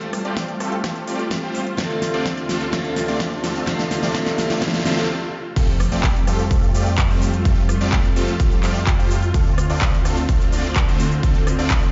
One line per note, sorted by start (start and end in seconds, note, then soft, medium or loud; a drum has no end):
0.00 1.75 G3 medium
0.00 1.28 A3 medium
0.00 1.75 A3 medium
0.00 1.28 C4 medium
0.00 1.29 F4 medium
0.00 5.52 F4 medium
0.00 1.29 C5 medium
0.00 closed hi-hat soft
0.00 riser medium
0.13 cross-stick medium
0.13 open hi-hat loud
0.25 0.50 A3 medium
0.25 0.50 C4 medium
0.25 0.50 F4 medium
0.25 0.50 G4 medium
0.25 0.50 D5 loud
0.25 closed hi-hat soft
0.37 kick loud
0.37 snare medium
0.37 closed hi-hat medium
0.48 closed hi-hat soft
0.60 0.76 A3 medium
0.60 0.76 C4 medium
0.60 0.76 F4 medium
0.60 0.76 G4 medium
0.60 0.76 A4 medium
0.60 cross-stick medium
0.60 open hi-hat loud
0.72 closed hi-hat soft
0.84 1.00 A3 medium
0.84 1.00 C4 medium
0.84 1.00 F4 medium
0.84 1.00 G4 medium
0.84 1.00 A4 medium
0.84 kick loud
0.84 snare medium
0.84 closed hi-hat medium
0.96 closed hi-hat soft
1.08 1.23 A3 medium
1.08 1.23 C4 medium
1.08 1.23 F4 medium
1.08 1.23 G4 medium
1.08 1.23 D5 medium
1.08 open hi-hat loud
1.19 closed hi-hat soft
1.30 1.38 A3 medium
1.30 1.38 C4 medium
1.30 1.39 F4 medium
1.30 1.39 G4 loud
1.30 kick loud
1.30 snare medium
1.30 closed hi-hat medium
1.43 1.59 A3 loud
1.43 1.59 C4 medium
1.43 1.59 F4 medium
1.43 1.59 G4 medium
1.43 1.59 C5 loud
1.55 open hi-hat loud
1.67 closed hi-hat soft
1.77 5.53 D2 medium
1.77 5.53 C3 medium
1.77 2.70 D3 medium
1.77 2.71 A3 medium
1.77 1.94 A3 medium
1.77 1.94 C4 medium
1.77 2.71 C4 medium
1.77 1.94 D4 medium
1.77 2.71 D4 medium
1.77 1.94 F4 medium
1.77 2.72 F4 loud
1.77 1.94 A4 medium
1.77 kick loud
1.77 snare medium
1.77 closed hi-hat medium
1.90 closed hi-hat soft
2.02 snare medium
2.02 open hi-hat loud
2.14 2.39 A3 medium
2.14 2.39 C4 medium
2.14 2.39 D4 medium
2.14 2.39 F4 medium
2.14 2.39 D5 loud
2.14 closed hi-hat soft
2.26 kick loud
2.26 snare medium
2.26 closed hi-hat medium
2.37 closed hi-hat soft
2.49 2.65 A3 medium
2.49 2.65 C4 medium
2.49 2.65 D4 medium
2.49 2.65 F4 medium
2.49 2.65 A4 medium
2.49 snare medium
2.49 open hi-hat loud
2.61 closed hi-hat soft
2.72 3.65 D3 loud
2.72 3.65 A3 medium
2.72 2.89 A3 medium
2.72 2.89 C4 medium
2.72 3.65 C4 medium
2.72 2.89 D4 medium
2.72 3.66 D4 medium
2.72 2.89 F4 medium
2.72 3.66 F4 loud
2.72 2.89 A4 loud
2.72 kick loud
2.72 snare medium
2.72 closed hi-hat medium
2.85 closed hi-hat soft
2.96 snare medium
2.96 open hi-hat loud
3.08 3.33 A3 medium
3.08 3.33 C4 medium
3.08 3.33 D4 medium
3.08 3.33 F4 medium
3.08 3.33 D5 loud
3.08 closed hi-hat soft
3.20 kick loud
3.20 snare medium
3.20 closed hi-hat medium
3.44 3.59 A3 medium
3.44 3.59 C4 medium
3.44 3.59 D4 medium
3.44 3.59 F4 medium
3.44 3.59 A4 medium
3.44 snare medium
3.44 open hi-hat loud
3.56 closed hi-hat soft
3.66 4.12 D3 loud
3.66 4.12 A3 medium
3.66 3.83 A3 medium
3.66 4.13 C4 medium
3.66 3.83 C4 medium
3.66 3.83 D4 medium
3.66 4.13 D4 medium
3.66 3.83 F4 medium
3.66 4.13 F4 loud
3.66 3.83 A4 loud
3.66 kick loud
3.66 snare medium
3.66 closed hi-hat medium
3.79 snare medium
3.79 closed hi-hat soft
3.91 snare medium
3.91 open hi-hat loud
4.03 4.13 A3 medium
4.03 4.13 C4 medium
4.03 4.13 D4 medium
4.03 4.13 F4 medium
4.03 4.13 D5 loud
4.03 snare medium
4.03 closed hi-hat soft
4.13 4.59 D3 loud
4.13 4.60 A3 medium
4.13 4.30 A3 medium
4.13 4.30 C4 medium
4.13 4.60 C4 medium
4.13 4.30 D4 medium
4.13 4.60 D4 medium
4.13 4.30 F4 medium
4.13 4.61 F4 loud
4.13 4.30 A4 loud
4.13 kick loud
4.13 snare loud
4.13 closed hi-hat medium
4.26 snare medium
4.26 closed hi-hat soft
4.38 snare loud
4.38 open hi-hat loud
4.50 4.60 A3 medium
4.50 4.60 C4 medium
4.50 4.60 D4 medium
4.50 4.60 F4 medium
4.50 4.60 D5 loud
4.50 snare medium
4.50 closed hi-hat soft
4.61 4.83 D3 loud
4.61 4.83 A3 loud
4.61 4.78 A3 medium
4.61 4.78 C4 medium
4.61 4.84 C4 medium
4.61 4.78 D4 medium
4.61 4.84 D4 medium
4.61 4.78 F4 medium
4.61 4.84 F4 loud
4.61 4.78 A4 loud
4.61 kick loud
4.61 snare loud
4.61 closed hi-hat medium
4.68 snare medium
4.74 snare medium
4.74 closed hi-hat soft
4.80 snare medium
4.84 5.07 D3 loud
4.84 5.07 A3 medium
4.84 5.01 A3 medium
4.84 5.07 C4 medium
4.84 5.01 C4 medium
4.84 5.01 D4 medium
4.84 5.08 D4 medium
4.84 5.01 F4 medium
4.84 5.08 F4 loud
4.84 5.01 A4 loud
4.84 snare loud
4.84 open hi-hat loud
4.91 snare medium
4.97 snare medium
4.97 closed hi-hat soft
5.03 snare medium
5.56 5.89 F2 loud
5.56 9.31 G3 medium
5.56 5.72 A3 medium
5.56 9.31 A3 medium
5.56 5.72 C4 medium
5.56 5.72 F4 medium
5.56 11.92 F4 loud
5.56 5.72 G4 medium
5.56 5.72 A4 loud
5.56 kick loud
5.56 closed hi-hat medium
5.56 crash loud
5.56 impact medium
5.56 shaker soft
5.80 cross-stick medium
5.80 open hi-hat loud
5.80 shaker medium
5.92 6.25 F2 loud
5.92 6.17 A3 loud
5.92 6.17 C4 medium
5.92 6.17 F4 medium
5.92 6.17 G4 medium
5.92 6.17 D5 loud
5.92 closed hi-hat medium
5.92 shaker soft
6.04 kick loud
6.04 clap loud
6.04 closed hi-hat medium
6.04 shaker soft
6.16 shaker soft
6.27 6.49 F2 loud
6.27 6.43 A3 medium
6.27 6.43 C4 medium
6.27 6.43 F4 medium
6.27 6.43 G4 medium
6.27 6.43 A4 medium
6.27 cross-stick medium
6.27 open hi-hat loud
6.27 shaker medium
6.39 closed hi-hat medium
6.39 shaker soft
6.51 6.72 F2 loud
6.51 6.67 A3 medium
6.51 6.67 C4 medium
6.51 6.67 F4 medium
6.51 6.67 G4 medium
6.51 6.67 A4 medium
6.51 kick loud
6.51 closed hi-hat medium
6.51 shaker soft
6.63 closed hi-hat soft
6.63 shaker soft
6.74 7.08 F2 medium
6.74 6.90 A3 medium
6.74 6.90 C4 medium
6.74 6.90 F4 medium
6.74 6.90 G4 medium
6.74 6.90 D5 medium
6.74 open hi-hat loud
6.74 shaker medium
6.86 closed hi-hat medium
6.86 shaker soft
6.98 kick loud
6.98 clap loud
6.98 closed hi-hat medium
6.98 shaker soft
7.10 7.43 F2 loud
7.10 7.26 A3 loud
7.10 7.26 C4 medium
7.10 7.26 F4 medium
7.10 7.26 G4 medium
7.10 7.26 C5 loud
7.10 shaker soft
7.22 open hi-hat loud
7.22 shaker medium
7.34 closed hi-hat medium
7.34 shaker soft
7.45 7.78 F2 loud
7.45 7.61 A3 medium
7.45 7.61 C4 medium
7.45 7.61 F4 medium
7.45 7.61 G4 medium
7.45 7.61 A4 loud
7.45 kick loud
7.45 closed hi-hat medium
7.45 shaker soft
7.69 cross-stick medium
7.69 open hi-hat loud
7.69 shaker medium
7.81 8.14 F2 loud
7.81 8.06 A3 loud
7.81 8.06 C4 medium
7.81 8.06 F4 medium
7.81 8.06 G4 medium
7.81 8.06 D5 loud
7.81 closed hi-hat medium
7.81 shaker soft
7.93 kick loud
7.93 clap loud
7.93 closed hi-hat medium
7.93 shaker soft
8.05 shaker soft
8.16 8.37 F2 loud
8.16 8.32 A3 medium
8.16 8.32 C4 medium
8.16 8.32 F4 medium
8.16 8.32 G4 medium
8.16 8.32 A4 medium
8.16 open hi-hat loud
8.16 shaker medium
8.28 closed hi-hat medium
8.28 shaker soft
8.40 8.61 F2 loud
8.40 8.56 A3 medium
8.40 8.56 C4 medium
8.40 8.56 F4 medium
8.40 8.56 G4 medium
8.40 8.56 A4 medium
8.40 kick loud
8.40 closed hi-hat medium
8.40 shaker soft
8.52 closed hi-hat soft
8.52 shaker soft
8.63 8.96 F2 loud
8.63 8.79 A3 medium
8.63 8.79 C4 medium
8.63 8.79 F4 medium
8.63 8.79 G4 medium
8.63 8.79 D5 medium
8.63 clap medium
8.63 open hi-hat loud
8.63 shaker medium
8.75 closed hi-hat medium
8.75 shaker soft
8.87 kick loud
8.87 clap loud
8.87 closed hi-hat medium
8.87 shaker soft
8.99 9.32 F2 loud
8.99 9.15 A3 loud
8.99 9.15 C4 medium
8.99 9.15 F4 medium
8.99 9.15 G4 medium
8.99 9.15 C5 loud
8.99 shaker soft
9.11 open hi-hat loud
9.11 shaker medium
9.22 closed hi-hat medium
9.22 shaker soft
9.34 9.67 D2 medium
9.34 11.92 D3 medium
9.34 9.50 A3 medium
9.34 9.50 C4 medium
9.34 11.92 C4 medium
9.34 9.50 D4 medium
9.34 9.50 F4 medium
9.34 9.50 A4 loud
9.34 kick loud
9.34 closed hi-hat medium
9.34 shaker soft
9.58 cross-stick medium
9.58 open hi-hat loud
9.58 shaker medium
9.70 10.03 D2 loud
9.70 9.95 A3 medium
9.70 9.95 C4 medium
9.70 9.95 D4 medium
9.70 9.95 F4 medium
9.70 9.95 D5 loud
9.70 closed hi-hat medium
9.70 shaker soft
9.81 kick loud
9.81 clap loud
9.81 closed hi-hat medium
9.81 shaker soft
9.94 shaker soft
10.05 10.26 D2 loud
10.05 10.21 A3 medium
10.05 10.21 C4 medium
10.05 10.21 D4 medium
10.05 10.21 F4 medium
10.05 10.21 A4 medium
10.05 cross-stick medium
10.05 open hi-hat loud
10.05 shaker medium
10.17 closed hi-hat medium
10.17 shaker soft
10.29 10.50 D2 loud
10.29 10.45 A3 medium
10.29 10.45 C4 medium
10.29 10.45 D4 medium
10.29 10.45 F4 medium
10.29 10.45 A4 medium
10.29 kick loud
10.29 closed hi-hat medium
10.29 shaker soft
10.41 closed hi-hat soft
10.41 shaker soft
10.52 10.86 D2 loud
10.52 10.68 A3 medium
10.52 10.68 C4 medium
10.52 10.68 D4 medium
10.52 10.68 F4 medium
10.52 10.68 D5 medium
10.52 open hi-hat loud
10.52 shaker medium
10.64 closed hi-hat medium
10.64 shaker soft
10.76 kick loud
10.76 clap loud
10.76 closed hi-hat medium
10.76 shaker soft
10.88 11.21 D2 loud
10.88 11.04 A3 loud
10.88 11.04 C4 medium
10.88 11.04 D4 medium
10.88 11.04 F4 medium
10.88 11.04 C5 loud
10.88 shaker soft
11.00 open hi-hat loud
11.00 shaker medium
11.11 closed hi-hat soft
11.11 shaker soft
11.23 11.56 D2 loud
11.23 11.39 A3 medium
11.23 11.39 C4 medium
11.23 11.39 D4 medium
11.23 11.39 F4 medium
11.23 11.39 A4 loud
11.23 kick loud
11.23 closed hi-hat medium
11.23 shaker soft
11.35 closed hi-hat soft
11.47 cross-stick medium
11.47 open hi-hat loud
11.47 shaker medium
11.59 11.92 D2 loud
11.59 11.84 A3 loud
11.59 11.84 C4 medium
11.59 11.84 D4 medium
11.59 11.84 F4 medium
11.59 11.84 D5 loud
11.59 closed hi-hat medium
11.59 shaker soft
11.71 kick loud
11.71 clap loud
11.71 closed hi-hat medium
11.71 shaker soft
11.83 shaker soft